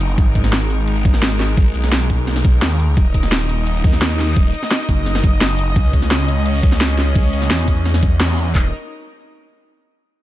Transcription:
Already playing: F#1 D#4 A#4 D#5
0.00 closed hi-hat, shaker
0.18 G#1 G#3, kick, closed hi-hat
0.35 kick, closed hi-hat, shaker
0.44 snare
0.53 snare, closed hi-hat
0.61 closed hi-hat
0.70 closed hi-hat, shaker
0.88 closed hi-hat
0.96 closed hi-hat
1.05 G#1, kick, closed hi-hat, shaker
1.14 snare
1.22 snare, closed hi-hat
1.40 snare, closed hi-hat, shaker
1.57 G#1, kick, closed hi-hat
1.75 B1, closed hi-hat, shaker
1.84 snare
1.92 snare, closed hi-hat
2.01 closed hi-hat
2.10 kick, closed hi-hat, shaker
2.27 snare, closed hi-hat
2.36 snare, closed hi-hat
2.45 kick, closed hi-hat, shaker
2.62 D#2, snare, closed hi-hat
2.71 shaker
2.80 closed hi-hat, shaker
2.97 D#1 D#4 D#5, kick, closed hi-hat
3.14 kick, closed hi-hat, shaker
3.23 snare
3.32 snare, closed hi-hat
3.41 closed hi-hat
3.49 closed hi-hat, shaker
3.67 closed hi-hat
3.75 closed hi-hat
3.84 D#2, kick, closed hi-hat, shaker
3.93 snare
4.02 snare, closed hi-hat
4.19 snare, closed hi-hat, shaker
4.36 D#1, kick, closed hi-hat
4.54 closed hi-hat, shaker
4.63 snare
4.71 snare, closed hi-hat
4.80 closed hi-hat
4.89 F#1, kick, closed hi-hat, shaker
5.06 snare, closed hi-hat
5.15 snare, closed hi-hat
5.24 kick, closed hi-hat, shaker
5.41 snare, closed hi-hat
5.59 closed hi-hat, shaker
5.76 C#2 C#4 G#4, kick, closed hi-hat
5.93 kick, closed hi-hat, shaker
6.02 snare
6.11 snare, closed hi-hat
6.20 closed hi-hat
6.28 closed hi-hat, shaker
6.46 closed hi-hat
6.55 closed hi-hat
6.63 C#2, kick, closed hi-hat, shaker
6.72 snare
6.81 snare, closed hi-hat
6.98 snare, closed hi-hat, shaker
7.16 C#2, kick, closed hi-hat
7.33 C#2, closed hi-hat, shaker
7.42 snare
7.50 E2, snare, closed hi-hat
7.59 closed hi-hat
7.68 kick, closed hi-hat, shaker
7.85 snare, closed hi-hat
7.94 snare, closed hi-hat
8.03 kick, closed hi-hat, shaker
8.20 snare, closed hi-hat
8.29 shaker
8.38 closed hi-hat, shaker
8.47 shaker
8.55 D#1 D#4 A#4 D#5, kick, clap

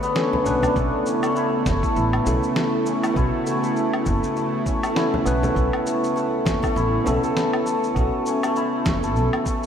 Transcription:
Already playing: D3 A3 B3 D4 F#4 G#4 C#5
0.03 B3, shaker
0.15 C#4 D4 A4, snare, shaker
0.33 B3, frame drum
0.44 B1 C#4 D4 B4, shaker
0.63 D4, frame drum, low woodblock, shaker
0.74 B1 C#3 A3 B3 C#4 E4, kick, shaker
0.78 A4
1.06 C#4, shaker
1.23 A3, low woodblock, shaker
1.36 E4, shaker
1.66 F#1 A3, kick, snare, frame drum, shaker
1.83 A4, kick, shaker
1.96 A1, shaker
2.13 low woodblock
2.24 B1 A3 B3 C#4, frame drum, shaker
2.28 A4
2.43 shaker
2.56 A3, snare, shaker
2.86 C#4, shaker
3.04 A3, low woodblock, shaker
3.14 B1 B3 C#4 E4, kick, shaker
3.18 F#4
3.46 A3, shaker
3.63 A4, shaker
3.76 shaker
3.94 low woodblock
4.06 F#1 A3, kick, frame drum, shaker
4.23 shaker
4.36 A3, shaker
4.66 C#4, kick, shaker
4.83 A3, low woodblock, shaker
4.95 B3 C#4 E4 A4, snare, shaker
5.14 frame drum
5.25 B1 A3 B3 C#4 B4, shaker
5.43 A4, frame drum, shaker
5.55 B1 B3 C#4 A4, kick, shaker
5.73 low woodblock
5.87 A3, shaker
6.04 shaker
6.16 A3, shaker
6.45 F#1 C#4, kick, snare, frame drum, shaker
6.63 A3, kick, low woodblock, shaker
6.76 A1 E4, shaker
7.04 B1 A3 B3 C#4 A4, frame drum, shaker
7.23 A4, shaker
7.37 snare, shaker
7.53 low woodblock
7.66 A3, shaker
7.84 shaker
7.95 B1 A3 B3 C#4, kick, shaker
7.99 F#4
8.26 C#4, shaker
8.43 A3, low woodblock, shaker
8.56 E4, shaker
8.86 F#1 A3, kick, snare, frame drum, shaker
9.03 A4, shaker
9.16 B1, shaker
9.33 low woodblock
9.46 A3, kick, shaker

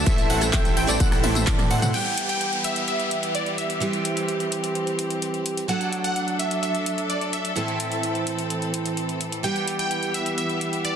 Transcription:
Already playing: A3 E5
0.06 A1 A2 C3 E3 A3 C4 E4 A4 C5 E5, kick, closed hi-hat, tambourine
0.18 closed hi-hat, tambourine
0.30 A1 A3 C4 E4 C5 F#5, open hi-hat
0.41 A2 E3 A3 C4 A4, cross-stick, closed hi-hat, tambourine
0.53 A1 A3 C4 E4 C5 G5, kick, clap, closed hi-hat, tambourine
0.65 closed hi-hat, tambourine
0.77 A1 A3 C4 E4 C5 G5, open hi-hat
0.87 A1 A2 E3 A3 C4 E4 A4 C5 D5, closed hi-hat, tambourine
1.00 A1 A3 C4 E4 C5 F#5, kick, closed hi-hat, tambourine
1.12 cross-stick, open hi-hat, tambourine
1.24 A1 A3 C4 E4 C5 E5, open hi-hat, high tom
1.35 closed hi-hat, high tom, tambourine
1.47 A2 D5, kick, clap, closed hi-hat, mid tom, tambourine
1.59 cross-stick, closed hi-hat, mid tom, tambourine
1.71 A2 A3 C4 E4 C5 F#5, open hi-hat
1.82 A2 A3 C4 E4 C5 F#5, closed hi-hat, mid tom, tambourine
1.93 E3 G3 B3 G4 G5, closed hi-hat, crash, downlifter
2.06 closed hi-hat
2.18 closed hi-hat
2.29 G5, closed hi-hat
2.41 closed hi-hat
2.53 closed hi-hat
2.64 E5, closed hi-hat
2.76 closed hi-hat
2.88 E5, closed hi-hat
3.00 closed hi-hat
3.11 closed hi-hat
3.23 closed hi-hat
3.35 D5, closed hi-hat
3.46 closed hi-hat
3.58 E5, closed hi-hat
3.70 closed hi-hat
3.80 E3 G3 C4 G4, closed hi-hat
3.93 closed hi-hat
4.05 closed hi-hat
4.17 closed hi-hat
4.29 closed hi-hat
4.40 closed hi-hat
4.52 closed hi-hat
4.64 closed hi-hat
4.75 closed hi-hat
4.87 closed hi-hat
4.99 closed hi-hat
5.10 closed hi-hat
5.22 closed hi-hat
5.34 closed hi-hat
5.46 closed hi-hat
5.57 closed hi-hat
5.68 F#3 A3 D4 A4 F#5, closed hi-hat
5.81 closed hi-hat
5.93 closed hi-hat
6.04 F#5, closed hi-hat
6.16 closed hi-hat
6.28 closed hi-hat
6.39 E5, closed hi-hat
6.51 closed hi-hat
6.63 E5, closed hi-hat
6.75 closed hi-hat
6.86 closed hi-hat
6.98 closed hi-hat
7.10 D5, closed hi-hat
7.21 closed hi-hat
7.33 E5, closed hi-hat
7.45 closed hi-hat
7.55 A2 E3 A3 C4 A4, closed hi-hat
7.68 closed hi-hat
7.80 closed hi-hat
7.92 closed hi-hat
8.03 closed hi-hat
8.15 closed hi-hat
8.27 closed hi-hat
8.39 closed hi-hat
8.50 closed hi-hat
8.62 closed hi-hat
8.74 closed hi-hat
8.86 closed hi-hat
8.97 closed hi-hat
9.09 closed hi-hat
9.21 closed hi-hat
9.32 closed hi-hat
9.43 E3 G3 B3 G4 G5, closed hi-hat
9.56 closed hi-hat
9.68 closed hi-hat
9.79 G5, closed hi-hat
9.91 closed hi-hat
10.03 closed hi-hat
10.14 E5, closed hi-hat
10.26 closed hi-hat
10.38 E5, closed hi-hat
10.50 closed hi-hat
10.61 closed hi-hat
10.73 closed hi-hat
10.85 D5, closed hi-hat

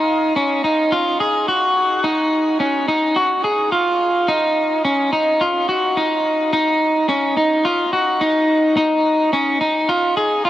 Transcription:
Already playing: D#4
0.36 C#4
0.64 D#4
0.92 F4
1.20 G#4
1.48 F#4
2.04 D#4
2.60 C#4
2.88 D#4
3.16 F#4
3.44 G#4
3.72 F4
4.28 D#4
4.84 C#4
5.12 D#4
5.41 F4
5.69 F#4
5.97 D#4
6.53 D#4
7.09 C#4
7.37 D#4
7.65 F4
7.93 F#4
8.21 D#4
8.77 D#4
9.33 C#4
9.61 D#4
9.89 F4
10.17 G#4
10.45 F4

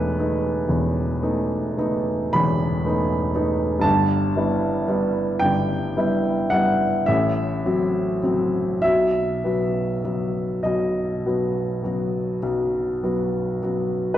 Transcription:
Already playing: E1 E2 A3 B3 D#4 B4
0.19 A3 B3 D#4
0.69 E1 E2
1.22 A3 B3 D#4
1.78 A3 B3 D#4
2.33 E1 E2 B5
2.85 A3 B3 D#4
3.35 A3 B3 D#4
3.79 G2 A5
3.83 G1
4.36 G3 B3 E4
4.88 G3 B3 E4
5.39 G1 G2 G5
5.97 G3 B3 E4
6.50 G3 B3 E4 F#5
7.06 A1 A2 E5
7.65 F#3 C4 F#4
8.23 F#3 C4 F#4
8.82 B1 B2 E5
9.44 F#3 B3 F#4
10.04 F#3 B3 F#4
10.63 B1 B2 D#5
11.26 F#3 B3 F#4
11.83 F#3 B3 F#4
12.43 B1 B2
13.02 F#3 B3 F#4
13.62 F#3 B3 F#4
14.14 B4

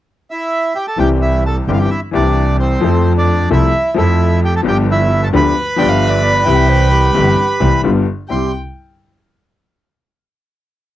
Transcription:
0.31 E4 E5
0.75 G4 G5
0.87 A4 A5
0.97 C2 C3 E3 G3 C4 G4 G5
1.22 E4 E5
1.46 A4 A5
1.66 G1 G2 E3 G3 C4 G4 G5
1.72 F5
1.78 G4 G5
1.90 E4 E5
2.11 C2 C3 E3 G3 C4 D4 D5
2.15 G4
2.60 C4 C5
2.81 F2 F3 A3 C4 A4
3.18 D4 D5
3.50 C2 C3 F3 A3 C4 E4 A4 E5
3.94 F2 F3 A3 C4 A4 E5
3.99 E4
4.45 G4 G5
4.56 A4 A5
4.62 G1 G2 F3 B3 D4 G4
4.68 G4 G5
4.90 E4 E5
5.23 A4 A5
5.33 D2 D3 F3 B3 D4 G4 B4 B5
5.76 G1 G2 F3 B3 D4 D5 G5
5.80 G4
5.88 E5 F5
6.10 D5
6.23 D5
6.44 C2 C3 E3 G3 E5 G5
6.48 C4 G4
6.55 G5
6.69 C5
6.92 G4
7.14 G1 G2 E3 G3 C4 G4
7.60 C2 C3 E3 G3 C4 G4
7.83 G1 G2 D3 G3 B3 F4
8.29 C2 G3 C4 E4 G4 G5 C6

